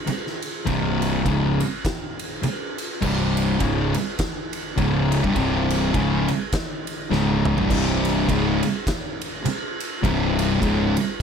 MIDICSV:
0, 0, Header, 1, 6, 480
1, 0, Start_track
1, 0, Tempo, 584795
1, 552, Time_signature, 4, 2, 24, 8
1, 9209, End_track
2, 0, Start_track
2, 0, Title_t, "Distorted electric guitar"
2, 0, Program_c, 0, 30
2, 537, Note_on_c, 0, 36, 98
2, 538, Note_on_c, 0, 43, 109
2, 543, Note_on_c, 0, 48, 111
2, 1020, Note_off_c, 0, 36, 0
2, 1021, Note_off_c, 0, 43, 0
2, 1023, Note_off_c, 0, 48, 0
2, 1025, Note_on_c, 0, 37, 97
2, 1029, Note_on_c, 0, 44, 101
2, 1034, Note_on_c, 0, 49, 104
2, 1303, Note_off_c, 0, 37, 0
2, 1306, Note_off_c, 0, 44, 0
2, 1308, Note_off_c, 0, 49, 0
2, 2473, Note_on_c, 0, 36, 99
2, 2476, Note_on_c, 0, 43, 110
2, 2481, Note_on_c, 0, 48, 117
2, 2950, Note_off_c, 0, 36, 0
2, 2951, Note_off_c, 0, 43, 0
2, 2954, Note_off_c, 0, 48, 0
2, 2954, Note_on_c, 0, 37, 92
2, 2959, Note_on_c, 0, 44, 90
2, 2962, Note_on_c, 0, 49, 117
2, 3229, Note_off_c, 0, 37, 0
2, 3232, Note_off_c, 0, 44, 0
2, 3233, Note_off_c, 0, 49, 0
2, 3913, Note_on_c, 0, 37, 97
2, 3919, Note_on_c, 0, 49, 109
2, 3921, Note_on_c, 0, 44, 102
2, 4291, Note_off_c, 0, 37, 0
2, 4294, Note_off_c, 0, 49, 0
2, 4295, Note_off_c, 0, 44, 0
2, 4295, Note_on_c, 0, 36, 86
2, 4299, Note_on_c, 0, 43, 95
2, 4384, Note_off_c, 0, 36, 0
2, 4385, Note_off_c, 0, 43, 0
2, 4394, Note_on_c, 0, 36, 103
2, 4395, Note_on_c, 0, 43, 103
2, 4397, Note_on_c, 0, 48, 110
2, 4870, Note_off_c, 0, 36, 0
2, 4871, Note_off_c, 0, 43, 0
2, 4872, Note_off_c, 0, 48, 0
2, 4875, Note_on_c, 0, 37, 94
2, 4878, Note_on_c, 0, 44, 101
2, 4883, Note_on_c, 0, 49, 112
2, 5150, Note_off_c, 0, 37, 0
2, 5151, Note_off_c, 0, 44, 0
2, 5154, Note_off_c, 0, 49, 0
2, 5832, Note_on_c, 0, 37, 98
2, 5835, Note_on_c, 0, 44, 104
2, 5838, Note_on_c, 0, 49, 115
2, 6209, Note_off_c, 0, 37, 0
2, 6211, Note_off_c, 0, 44, 0
2, 6212, Note_off_c, 0, 49, 0
2, 6221, Note_on_c, 0, 36, 84
2, 6223, Note_on_c, 0, 43, 97
2, 6313, Note_off_c, 0, 36, 0
2, 6313, Note_off_c, 0, 43, 0
2, 6328, Note_on_c, 0, 36, 102
2, 6331, Note_on_c, 0, 48, 116
2, 6333, Note_on_c, 0, 43, 108
2, 6796, Note_off_c, 0, 36, 0
2, 6797, Note_off_c, 0, 48, 0
2, 6799, Note_off_c, 0, 43, 0
2, 6803, Note_on_c, 0, 37, 100
2, 6807, Note_on_c, 0, 44, 104
2, 6810, Note_on_c, 0, 49, 109
2, 7072, Note_off_c, 0, 37, 0
2, 7074, Note_off_c, 0, 44, 0
2, 7076, Note_off_c, 0, 49, 0
2, 8231, Note_on_c, 0, 36, 100
2, 8234, Note_on_c, 0, 43, 101
2, 8236, Note_on_c, 0, 48, 117
2, 8704, Note_off_c, 0, 36, 0
2, 8706, Note_off_c, 0, 43, 0
2, 8707, Note_off_c, 0, 48, 0
2, 8708, Note_on_c, 0, 37, 97
2, 8713, Note_on_c, 0, 44, 96
2, 8715, Note_on_c, 0, 49, 111
2, 8982, Note_off_c, 0, 37, 0
2, 8984, Note_off_c, 0, 44, 0
2, 8985, Note_off_c, 0, 49, 0
2, 9209, End_track
3, 0, Start_track
3, 0, Title_t, "Fingered electric bass"
3, 0, Program_c, 1, 33
3, 551, Note_on_c, 1, 24, 97
3, 1000, Note_off_c, 1, 24, 0
3, 1033, Note_on_c, 1, 25, 89
3, 1296, Note_off_c, 1, 25, 0
3, 2485, Note_on_c, 1, 24, 107
3, 2929, Note_off_c, 1, 24, 0
3, 2964, Note_on_c, 1, 25, 97
3, 3223, Note_off_c, 1, 25, 0
3, 3919, Note_on_c, 1, 25, 115
3, 4273, Note_off_c, 1, 25, 0
3, 4303, Note_on_c, 1, 24, 97
3, 4394, Note_off_c, 1, 24, 0
3, 4398, Note_on_c, 1, 24, 99
3, 4845, Note_off_c, 1, 24, 0
3, 4880, Note_on_c, 1, 25, 93
3, 5141, Note_off_c, 1, 25, 0
3, 5836, Note_on_c, 1, 25, 105
3, 6191, Note_off_c, 1, 25, 0
3, 6224, Note_on_c, 1, 24, 99
3, 6314, Note_off_c, 1, 24, 0
3, 6320, Note_on_c, 1, 24, 107
3, 6765, Note_off_c, 1, 24, 0
3, 6803, Note_on_c, 1, 25, 102
3, 7061, Note_off_c, 1, 25, 0
3, 8236, Note_on_c, 1, 24, 105
3, 8680, Note_off_c, 1, 24, 0
3, 8717, Note_on_c, 1, 25, 94
3, 8975, Note_off_c, 1, 25, 0
3, 9209, End_track
4, 0, Start_track
4, 0, Title_t, "Muted distorted electric guitar strokes"
4, 57, Note_on_c, 9, 29, 63
4, 139, Note_off_c, 9, 29, 0
4, 1994, Note_on_c, 9, 29, 64
4, 2076, Note_off_c, 9, 29, 0
4, 7757, Note_on_c, 9, 29, 64
4, 7839, Note_off_c, 9, 29, 0
4, 9209, End_track
5, 0, Start_track
5, 0, Title_t, "Muted fingered electric bass strokes"
5, 61, Note_on_c, 9, 29, 46
5, 143, Note_off_c, 9, 29, 0
5, 1999, Note_on_c, 9, 29, 45
5, 2081, Note_off_c, 9, 29, 0
5, 7759, Note_on_c, 9, 29, 48
5, 7841, Note_off_c, 9, 29, 0
5, 9209, End_track
6, 0, Start_track
6, 0, Title_t, "Drums"
6, 59, Note_on_c, 9, 51, 102
6, 141, Note_off_c, 9, 51, 0
6, 219, Note_on_c, 9, 38, 34
6, 301, Note_off_c, 9, 38, 0
6, 348, Note_on_c, 9, 51, 72
6, 430, Note_off_c, 9, 51, 0
6, 549, Note_on_c, 9, 36, 98
6, 550, Note_on_c, 9, 51, 95
6, 631, Note_off_c, 9, 36, 0
6, 632, Note_off_c, 9, 51, 0
6, 837, Note_on_c, 9, 51, 73
6, 919, Note_off_c, 9, 51, 0
6, 1032, Note_on_c, 9, 36, 109
6, 1033, Note_on_c, 9, 51, 91
6, 1114, Note_off_c, 9, 36, 0
6, 1115, Note_off_c, 9, 51, 0
6, 1317, Note_on_c, 9, 51, 76
6, 1399, Note_off_c, 9, 51, 0
6, 1517, Note_on_c, 9, 36, 100
6, 1518, Note_on_c, 9, 51, 92
6, 1527, Note_on_c, 9, 38, 109
6, 1599, Note_off_c, 9, 36, 0
6, 1600, Note_off_c, 9, 51, 0
6, 1609, Note_off_c, 9, 38, 0
6, 1801, Note_on_c, 9, 51, 80
6, 1883, Note_off_c, 9, 51, 0
6, 1996, Note_on_c, 9, 51, 92
6, 2079, Note_off_c, 9, 51, 0
6, 2284, Note_on_c, 9, 51, 76
6, 2366, Note_off_c, 9, 51, 0
6, 2481, Note_on_c, 9, 36, 110
6, 2483, Note_on_c, 9, 49, 102
6, 2563, Note_off_c, 9, 36, 0
6, 2565, Note_off_c, 9, 49, 0
6, 2766, Note_on_c, 9, 51, 84
6, 2848, Note_off_c, 9, 51, 0
6, 2956, Note_on_c, 9, 51, 112
6, 2960, Note_on_c, 9, 36, 106
6, 3038, Note_off_c, 9, 51, 0
6, 3042, Note_off_c, 9, 36, 0
6, 3237, Note_on_c, 9, 51, 88
6, 3319, Note_off_c, 9, 51, 0
6, 3437, Note_on_c, 9, 51, 113
6, 3440, Note_on_c, 9, 36, 101
6, 3446, Note_on_c, 9, 38, 110
6, 3519, Note_off_c, 9, 51, 0
6, 3522, Note_off_c, 9, 36, 0
6, 3528, Note_off_c, 9, 38, 0
6, 3717, Note_on_c, 9, 51, 85
6, 3799, Note_off_c, 9, 51, 0
6, 3920, Note_on_c, 9, 36, 105
6, 3921, Note_on_c, 9, 51, 98
6, 4003, Note_off_c, 9, 36, 0
6, 4003, Note_off_c, 9, 51, 0
6, 4202, Note_on_c, 9, 51, 76
6, 4284, Note_off_c, 9, 51, 0
6, 4303, Note_on_c, 9, 36, 105
6, 4385, Note_off_c, 9, 36, 0
6, 4397, Note_on_c, 9, 51, 96
6, 4400, Note_on_c, 9, 36, 99
6, 4480, Note_off_c, 9, 51, 0
6, 4482, Note_off_c, 9, 36, 0
6, 4682, Note_on_c, 9, 51, 75
6, 4764, Note_off_c, 9, 51, 0
6, 4877, Note_on_c, 9, 51, 97
6, 4878, Note_on_c, 9, 36, 115
6, 4959, Note_off_c, 9, 51, 0
6, 4960, Note_off_c, 9, 36, 0
6, 5157, Note_on_c, 9, 51, 76
6, 5240, Note_off_c, 9, 51, 0
6, 5356, Note_on_c, 9, 51, 95
6, 5358, Note_on_c, 9, 36, 104
6, 5365, Note_on_c, 9, 38, 120
6, 5438, Note_off_c, 9, 51, 0
6, 5440, Note_off_c, 9, 36, 0
6, 5447, Note_off_c, 9, 38, 0
6, 5640, Note_on_c, 9, 51, 74
6, 5722, Note_off_c, 9, 51, 0
6, 5848, Note_on_c, 9, 38, 64
6, 5930, Note_off_c, 9, 38, 0
6, 6118, Note_on_c, 9, 45, 99
6, 6200, Note_off_c, 9, 45, 0
6, 6221, Note_on_c, 9, 43, 90
6, 6303, Note_off_c, 9, 43, 0
6, 6322, Note_on_c, 9, 36, 104
6, 6325, Note_on_c, 9, 57, 114
6, 6405, Note_off_c, 9, 36, 0
6, 6407, Note_off_c, 9, 57, 0
6, 6606, Note_on_c, 9, 51, 85
6, 6688, Note_off_c, 9, 51, 0
6, 6802, Note_on_c, 9, 36, 110
6, 6804, Note_on_c, 9, 51, 114
6, 6884, Note_off_c, 9, 36, 0
6, 6887, Note_off_c, 9, 51, 0
6, 7081, Note_on_c, 9, 51, 84
6, 7164, Note_off_c, 9, 51, 0
6, 7280, Note_on_c, 9, 36, 107
6, 7282, Note_on_c, 9, 51, 110
6, 7291, Note_on_c, 9, 38, 106
6, 7362, Note_off_c, 9, 36, 0
6, 7364, Note_off_c, 9, 51, 0
6, 7373, Note_off_c, 9, 38, 0
6, 7563, Note_on_c, 9, 51, 83
6, 7646, Note_off_c, 9, 51, 0
6, 7761, Note_on_c, 9, 51, 105
6, 7843, Note_off_c, 9, 51, 0
6, 8047, Note_on_c, 9, 51, 73
6, 8129, Note_off_c, 9, 51, 0
6, 8240, Note_on_c, 9, 36, 108
6, 8245, Note_on_c, 9, 51, 106
6, 8322, Note_off_c, 9, 36, 0
6, 8327, Note_off_c, 9, 51, 0
6, 8526, Note_on_c, 9, 51, 78
6, 8608, Note_off_c, 9, 51, 0
6, 8716, Note_on_c, 9, 36, 109
6, 8722, Note_on_c, 9, 51, 107
6, 8799, Note_off_c, 9, 36, 0
6, 8804, Note_off_c, 9, 51, 0
6, 9002, Note_on_c, 9, 51, 81
6, 9084, Note_off_c, 9, 51, 0
6, 9209, End_track
0, 0, End_of_file